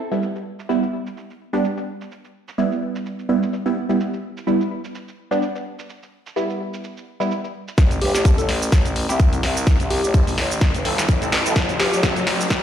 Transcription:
0.11 0.33 G3 medium
0.11 0.33 B3 medium
0.11 0.33 E4 medium
0.11 shaker medium
0.23 shaker soft
0.36 shaker soft
0.59 shaker medium
0.69 0.84 G3 medium
0.69 0.84 B3 medium
0.69 0.84 E4 medium
0.69 shaker soft
0.83 shaker soft
1.07 shaker medium
1.17 shaker soft
1.30 shaker soft
1.53 1.65 G3 medium
1.53 1.65 B3 medium
1.53 1.65 D4 medium
1.53 shaker medium
1.64 shaker soft
1.78 shaker soft
2.01 shaker medium
2.12 shaker soft
2.25 shaker soft
2.48 shaker medium
2.58 3.27 G3 medium
2.58 3.27 B3 medium
2.58 3.27 E4 medium
2.58 shaker medium
2.72 shaker soft
2.96 shaker medium
3.06 shaker medium
3.19 shaker soft
3.29 3.43 G3 medium
3.29 3.43 B3 medium
3.29 3.43 E4 medium
3.43 shaker medium
3.53 shaker medium
3.66 3.78 G3 medium
3.66 3.78 B3 medium
3.66 3.78 E4 medium
3.66 shaker soft
3.89 4.10 G3 medium
3.89 4.10 B3 medium
3.89 4.10 E4 medium
3.89 shaker medium
4.00 shaker soft
4.14 shaker soft
4.37 shaker medium
4.47 4.62 G3 medium
4.47 4.62 B3 medium
4.47 4.62 E4 medium
4.47 shaker medium
4.61 shaker soft
4.84 shaker medium
4.95 shaker medium
5.08 shaker soft
5.31 5.43 G3 medium
5.31 5.43 B3 medium
5.31 5.43 D4 medium
5.31 shaker medium
5.42 shaker medium
5.55 shaker soft
5.79 shaker medium
5.90 shaker soft
6.03 shaker soft
6.26 shaker medium
6.36 7.04 G3 medium
6.36 7.04 B3 medium
6.36 7.04 E4 medium
6.36 shaker medium
6.50 shaker soft
6.74 shaker medium
6.84 shaker medium
6.97 shaker soft
7.20 7.32 G3 medium
7.20 7.32 B3 medium
7.20 7.32 E4 medium
7.20 shaker medium
7.31 shaker medium
7.44 shaker soft
7.68 shaker medium
7.78 8.00 A1 medium
7.78 kick loud
7.78 snare soft
7.78 closed hi-hat medium
7.78 riser medium
7.78 shaker soft
7.91 closed hi-hat soft
7.91 shaker soft
8.01 8.12 G1 medium
8.01 8.10 G4 medium
8.01 open hi-hat loud
8.14 8.36 A1 medium
8.14 8.21 G4 medium
8.14 snare soft
8.14 shaker medium
8.25 8.40 C4 medium
8.25 8.40 E4 medium
8.25 8.40 A4 medium
8.25 kick loud
8.25 closed hi-hat medium
8.25 shaker medium
8.38 8.71 A1 medium
8.38 8.48 A4 medium
8.38 closed hi-hat medium
8.38 shaker soft
8.49 snare soft
8.49 open hi-hat loud
8.62 shaker medium
8.72 9.07 A1 loud
8.72 kick loud
8.72 snare medium
8.72 closed hi-hat medium
8.72 shaker medium
8.85 closed hi-hat medium
8.85 shaker soft
8.96 open hi-hat loud
9.09 9.41 C2 medium
9.09 9.21 C4 medium
9.09 9.21 E4 medium
9.09 9.21 G4 medium
9.09 closed hi-hat soft
9.09 shaker medium
9.20 kick loud
9.20 closed hi-hat medium
9.20 shaker medium
9.33 closed hi-hat soft
9.33 shaker soft
9.43 9.78 C2 loud
9.43 snare medium
9.43 open hi-hat loud
9.57 shaker medium
9.67 kick loud
9.67 snare medium
9.67 closed hi-hat medium
9.67 shaker soft
9.80 10.01 C2 medium
9.80 closed hi-hat soft
9.80 shaker soft
9.90 9.99 G4 medium
9.90 open hi-hat loud
10.04 10.36 A1 medium
10.04 10.10 G4 medium
10.04 shaker medium
10.14 10.82 C4 medium
10.14 10.82 E4 medium
10.14 10.82 A4 medium
10.14 kick loud
10.14 closed hi-hat medium
10.14 shaker medium
10.27 open hi-hat medium
10.27 shaker soft
10.38 10.72 A1 loud
10.38 snare medium
10.38 open hi-hat loud
10.51 shaker medium
10.61 kick loud
10.61 snare medium
10.61 closed hi-hat medium
10.61 shaker medium
10.74 11.07 G1 medium
10.74 closed hi-hat medium
10.74 shaker soft
10.85 10.99 C4 medium
10.85 10.99 E4 medium
10.85 10.99 A4 medium
10.85 open hi-hat loud
10.98 snare medium
10.98 closed hi-hat soft
10.98 shaker medium
11.09 11.43 A1 loud
11.09 kick loud
11.09 closed hi-hat medium
11.09 shaker medium
11.22 11.34 C4 medium
11.22 11.34 E4 medium
11.22 11.34 A4 medium
11.22 closed hi-hat medium
11.22 shaker soft
11.32 snare medium
11.32 open hi-hat loud
11.45 11.54 B1 medium
11.45 11.66 C4 medium
11.45 11.66 E4 medium
11.45 11.66 A4 medium
11.45 shaker medium
11.56 11.78 A1 loud
11.56 kick loud
11.56 snare medium
11.56 closed hi-hat medium
11.56 shaker soft
11.69 closed hi-hat soft
11.69 shaker soft
11.79 11.91 G1 medium
11.79 11.88 G4 medium
11.79 snare medium
11.79 open hi-hat loud
11.93 12.14 A1 medium
11.93 11.99 G4 medium
11.93 shaker medium
12.03 12.18 C4 medium
12.03 12.18 E4 medium
12.03 12.18 A4 medium
12.03 kick loud
12.03 snare medium
12.03 closed hi-hat medium
12.03 shaker medium
12.16 12.49 A1 loud
12.16 closed hi-hat medium
12.16 shaker soft
12.27 snare medium
12.27 open hi-hat loud
12.41 shaker medium
12.50 12.63 A1 loud
12.50 kick loud
12.50 snare medium
12.50 closed hi-hat medium
12.50 shaker soft

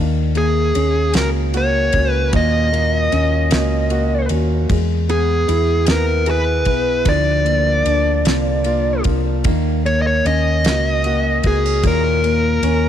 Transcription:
0.00 0.71 D#2 loud
0.00 2.29 D#3 medium
0.00 0.35 A#3 medium
0.35 1.53 A#3 soft
0.35 1.13 A#3 medium
0.35 1.12 G#4 medium
0.35 ride soft
0.74 1.13 D#2 medium
0.74 2.29 C#4 medium
0.74 1.93 C#4 medium
0.74 ride medium
1.13 1.90 C#2 medium
1.13 2.32 A#3 medium
1.13 1.93 F#4 medium
1.13 1.28 A#4 medium
1.13 snare loud
1.13 ride medium
1.54 2.70 A#3 medium
1.54 3.90 F#4 medium
1.54 2.11 C#5 loud
1.54 ride soft
1.93 2.31 C#2 medium
1.93 3.10 C#4 medium
1.93 3.48 F#4 medium
1.93 kick medium
1.93 ride medium
2.11 2.31 B4 loud
2.33 3.08 D#2 loud
2.33 4.66 A#2 medium
2.33 2.71 A#3 medium
2.33 4.28 D#5 medium
2.33 kick loud
2.33 ride medium
2.72 3.89 A#3 soft
2.72 3.50 A#3 medium
2.72 ride soft
3.12 3.49 D#2 loud
3.12 4.29 C#4 medium
3.12 4.65 C#4 medium
3.12 ride medium
3.51 4.26 C#2 loud
3.51 4.77 A#3 medium
3.51 4.29 F#4 medium
3.51 snare loud
3.51 ride medium
3.90 4.67 A#3 medium
3.90 4.78 F#4 medium
3.90 ride soft
4.29 4.67 D#2 loud
4.29 4.78 C#4 medium
4.29 4.69 F#4 medium
4.29 ride medium
4.70 5.44 E2 loud
4.70 7.02 G#3 medium
4.70 kick loud
4.70 ride medium
5.08 5.85 B3 medium
5.08 5.84 G#4 medium
5.08 ride soft
5.48 5.85 E2 medium
5.48 6.66 E4 medium
5.48 6.25 E4 medium
5.48 ride medium
5.86 6.66 D#2 loud
5.86 6.65 B3 medium
5.86 7.14 B3 medium
5.86 snare loud
5.86 ride medium
5.91 6.26 A#4 medium
6.26 7.04 E4 medium
6.26 7.14 G#4 medium
6.26 ride soft
6.31 7.10 B4 medium
6.65 7.04 B1 medium
6.65 7.05 B3 medium
6.65 7.14 E4 medium
6.65 kick medium
6.65 ride medium
7.05 7.82 D2 loud
7.05 9.41 D3 medium
7.05 9.45 F3 medium
7.05 9.03 D5 medium
7.05 kick loud
7.05 ride medium
7.44 8.64 A#3 soft
7.44 8.26 A#3 medium
7.44 ride soft
7.84 8.23 D2 medium
7.84 9.40 D4 medium
7.84 9.05 D4 medium
7.84 ride medium
8.25 9.01 C2 medium
8.25 9.45 A#3 medium
8.25 9.03 F4 medium
8.25 snare loud
8.25 ride medium
8.64 9.43 A#3 medium
8.64 9.54 F4 medium
8.64 ride soft
9.04 9.43 C2 medium
9.04 9.54 D4 medium
9.04 9.44 F4 medium
9.04 kick medium
9.04 ride medium
9.44 10.21 D#2 loud
9.44 11.80 D#3 medium
9.44 9.85 A#3 medium
9.44 kick loud
9.44 ride medium
9.85 11.05 A#3 medium
9.85 10.65 A#3 medium
9.85 10.01 C#5 medium
9.85 ride soft
10.02 10.06 D#5 medium
10.07 10.27 C#5 medium
10.25 10.62 D#2 medium
10.25 11.80 C#4 medium
10.25 11.45 C#4 medium
10.25 11.49 D#5 loud
10.25 ride medium
10.64 11.40 C#2 medium
10.64 11.84 A#3 medium
10.64 11.43 F#4 medium
10.64 snare loud
10.64 ride medium
11.04 12.24 A#3 medium
11.04 12.89 F#4 medium
11.04 ride soft
11.43 11.81 C#2 medium
11.43 11.66 B3 medium
11.43 12.89 F#4 medium
11.43 11.83 G#4 medium
11.43 kick medium
11.43 ride medium
11.66 12.62 C#4 soft
11.83 12.59 D#2 loud
11.83 12.89 A#2 medium
11.83 12.23 A#3 medium
11.83 12.89 A#4 medium
11.83 kick loud
11.83 ride medium
12.24 12.89 A#3 medium
12.24 ride soft
12.62 12.89 D#2 medium
12.62 12.89 C#4 medium
12.62 ride medium

